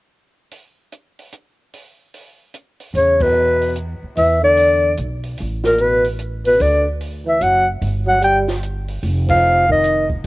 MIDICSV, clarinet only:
0, 0, Header, 1, 2, 480
1, 0, Start_track
1, 0, Tempo, 405954
1, 597, Time_signature, 3, 2, 24, 8
1, 12141, End_track
2, 0, Start_track
2, 0, Title_t, "Clarinet"
2, 0, Program_c, 0, 71
2, 3510, Note_on_c, 0, 73, 66
2, 3816, Note_on_c, 0, 71, 74
2, 3834, Note_off_c, 0, 73, 0
2, 4458, Note_off_c, 0, 71, 0
2, 4946, Note_on_c, 0, 76, 79
2, 5223, Note_off_c, 0, 76, 0
2, 5256, Note_on_c, 0, 74, 82
2, 5852, Note_off_c, 0, 74, 0
2, 6696, Note_on_c, 0, 70, 74
2, 6874, Note_on_c, 0, 71, 69
2, 6891, Note_off_c, 0, 70, 0
2, 7166, Note_off_c, 0, 71, 0
2, 7649, Note_on_c, 0, 71, 63
2, 7825, Note_on_c, 0, 74, 63
2, 7843, Note_off_c, 0, 71, 0
2, 8121, Note_off_c, 0, 74, 0
2, 8617, Note_on_c, 0, 76, 72
2, 8782, Note_on_c, 0, 78, 77
2, 8800, Note_off_c, 0, 76, 0
2, 9078, Note_off_c, 0, 78, 0
2, 9557, Note_on_c, 0, 78, 78
2, 9712, Note_off_c, 0, 78, 0
2, 9742, Note_on_c, 0, 79, 83
2, 9919, Note_off_c, 0, 79, 0
2, 10997, Note_on_c, 0, 77, 83
2, 11435, Note_off_c, 0, 77, 0
2, 11489, Note_on_c, 0, 75, 78
2, 11921, Note_off_c, 0, 75, 0
2, 12141, End_track
0, 0, End_of_file